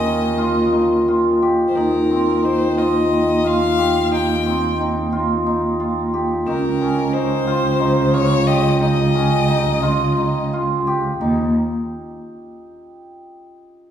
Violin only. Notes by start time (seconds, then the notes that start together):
Already playing: D#5
1.68 C5
1.76 A#4
2.45 C5
2.78 D#5
3.47 F5
4.14 G5
6.48 A#4
7.14 C5
8.14 C#5
8.47 D#5
8.81 D#5